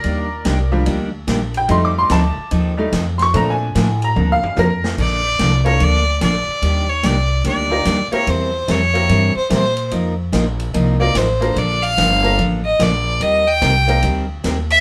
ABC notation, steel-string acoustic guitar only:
X:1
M:4/4
L:1/8
Q:"Swing" 1/4=146
K:Bb
V:1 name="Steel-string acoustic guitar"
[E,G,B,DG] z [E,G,B,DG] z [E,G,B,DG] z [E,G,B,DG] z | [F,CEA] z [F,CEA] z [F,CEA] z [F,CEA] z | [D,F,B,DA] z [D,F,B,DA] z [D,F,B,DA] z [D,F,B,DA] z | [D,F,B,DA] z [D,F,B,DA] z [D,F,B,DA] z [D,F,B,DA] z |
[E,G,B,DG] z [E,G,B,DG] z [E,G,B,DG] z [E,G,B,DG] z | [=E,G,C=EB] z [E,G,CEB] z [E,G,CEB] z [E,G,CEB] z | [F,B,EFB] z [F,B,EFB] z [F,B,EFB] z [F,B,EFB] z | [D,F,B,DA] z [D,F,B,DA] z [D,F,B,DA] z [D,F,B,DA] z |
[E,G,CGB] z [E,G,CGB] z [E,G,CGB] z [E,G,CGB] z |]